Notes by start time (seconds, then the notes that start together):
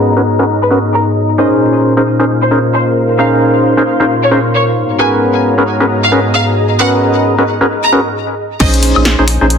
Already playing: G#2 B3 C#4 D#4 F#4 G#4 A#4 B4 C#5 D#5 A#5
0.17 C#4 F#4 G#4 A#4 B4
0.39 C#4 F#4 G#4 A#4 B4
0.62 B4
0.71 C#4 F#4 G#4 A#4 B4
0.93 A#4
1.38 A#2 C#4 D#4 F4 G#4 A#4 C5 D#5
1.81 F5
1.97 C#4 D#4 G#4 A#4 C5
2.19 C#4 D#4 G#4 A#4 C5
2.42 C5
2.51 C#4 D#4 G#4 A#4 C5
2.64 C6
2.74 C5
3.19 C#4 D#4 G#4 A#4 C5 F5
3.77 C#4 D#4 G#4 A#4 C5
4.00 C#4 D#4 G#4 A#4 C5
4.23 C#5
4.31 C#4 D#4 G#4 A#4 C5
4.54 C#5
4.76 G#2 B3 F#4 G#4 C#5 A#5
4.99 C#4 F#4 G#4 A#4 B4 G#5
5.10 D#5
5.19 A#5
5.58 C#4 F#4 G#4 A#4 B4
5.80 C#4 F#4 G#4 A#4 B4
6.03 F5
6.12 C#4 F#4 G#4 A#4 B4
6.34 F5
6.57 D#5
6.79 C#4 F#4 G#4 A#4 B4 F#5
7.38 C#4 F#4 G#4 A#4 B4
7.61 C#4 F#4 G#4 A#4 B4
7.84 A#5
7.92 C#4 F#4 G#4 A#4 B4
8.60 A#1 C#4 D#4 G#4 A#4 C5 D#5, kick, closed hi-hat, crash
8.74 closed hi-hat
8.83 open hi-hat
8.88 F5
8.96 A#1, high woodblock
9.05 snare, closed hi-hat
9.19 A#1 C#4 D#4 G#4 C5
9.28 finger snap, open hi-hat
9.41 A#1 C#4 D#4 G#4 C5
9.50 closed hi-hat